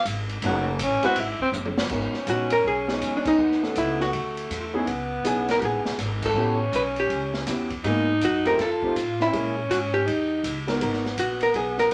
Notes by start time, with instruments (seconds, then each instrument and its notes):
0.05 upright bass G#1, kick, hi-hat pedal, ride
0.29 ride
0.42 upright bass F#1, grand piano A3 C#4 D#4 F#4 A4, alto saxophone F#4, kick, ride
0.68 alto saxophone A3
0.79 upright bass A1, kick, hi-hat pedal, ride
0.83 alto saxophone C#4
1.02 grand piano G#3 C4 E4 F#4 B4, alto saxophone F#4, muted upright bass stroke, ride
1.16 upright bass G#1, kick, ride
1.20 alto saxophone E4
1.39 alto saxophone C4, muted upright bass stroke, kick
1.52 upright bass F#1, hi-hat pedal, high tom
1.66 high tom
1.78 snare
1.89 upright bass G#1, grand piano G#3 B3 D#4 F#4 A#4, alto saxophone C#4, kick, crash
2.14 snare
2.27 upright bass A#1, grand piano G#3 B3 D#4 F#4 B4, hollow-body jazz guitar F#4, kick, hi-hat pedal, ride
2.50 hollow-body jazz guitar A#4, ride
2.64 upright bass B1, hollow-body jazz guitar G#4, kick
2.88 grand piano G#3 B3 D#4 F#4 G#4, snare
3.01 upright bass E2, kick, hi-hat pedal, ride
3.17 hollow-body jazz guitar D4
3.25 hollow-body jazz guitar D#4, kick, crash
3.37 upright bass D#2, alto saxophone B3
3.52 snare
3.62 grand piano A3 C#4 D#4 F#4 A4, snare
3.75 upright bass C#2, hollow-body jazz guitar E4, kick, hi-hat pedal, ride
4.00 hollow-body jazz guitar F#4, snare
4.13 upright bass D2, alto saxophone A3, kick, ride
4.37 ride
4.50 upright bass E2, kick, hi-hat pedal, ride
4.73 grand piano B3 C#4 D#4 E4 G#4
4.86 upright bass C#2, alto saxophone B3, kick, ride
5.24 upright bass B1, grand piano B3 C#4 D#4 E4 G#4, hollow-body jazz guitar G#4, kick, hi-hat pedal, ride
5.49 hollow-body jazz guitar A#4, snare, ride
5.59 upright bass A#1, hollow-body jazz guitar G4, kick, ride
5.65 hollow-body jazz guitar G#4
5.72 upright bass G#1
5.85 upright bass E1, snare
5.98 upright bass G#1, kick, snare, hi-hat pedal, ride
6.22 hollow-body jazz guitar A4, kick, crash
6.34 upright bass A1, grand piano B3 C#4 E4 F#4 G4, alto saxophone C#4
6.72 upright bass B1, hollow-body jazz guitar B4, hi-hat pedal, ride
6.96 hollow-body jazz guitar G4, ride
7.09 upright bass C#2, kick, ride
7.34 snare
7.46 upright bass E2, grand piano B3 C#4 E4 F#4 G4, kick, snare, hi-hat pedal, ride
7.70 kick, ride
7.83 upright bass G#2, grand piano A#3 B3 D#4 F#4 G#4, alto saxophone D#4, kick, ride
8.21 upright bass F#2, hollow-body jazz guitar F#4, kick, hi-hat pedal, ride
8.45 grand piano A3 C4 D#4 F4 G4, hollow-body jazz guitar A#4, ride
8.57 upright bass F2, alto saxophone F4, kick, snare, ride
8.61 hollow-body jazz guitar A4
8.82 grand piano A3 C4 D#4 F4 G4, kick
8.95 upright bass A2, kick, hi-hat pedal, ride
9.20 hollow-body jazz guitar E4, snare
9.27 alto saxophone C4
9.32 upright bass A#2, grand piano G#3 A#3 C#4 E4 G#4, alto saxophone C#4, kick, ride
9.70 upright bass G#2, hollow-body jazz guitar F#4, kick, hi-hat pedal, ride
9.94 hollow-body jazz guitar G4
10.05 upright bass E2, alto saxophone D#4, kick, ride
10.44 upright bass C#2, kick, hi-hat pedal, ride
10.67 grand piano G#3 B3 D#4 F#4 A#4, snare, ride
10.80 upright bass G#1, grand piano G#3 B3 D#4 F#4 A#4, alto saxophone B3, kick, ride
10.93 snare
11.06 snare
11.17 upright bass A#1, hollow-body jazz guitar F#4, kick, hi-hat pedal, ride
11.40 hollow-body jazz guitar A#4, ride
11.54 upright bass B1, hollow-body jazz guitar G#4, kick, ride
11.78 hollow-body jazz guitar A#4, snare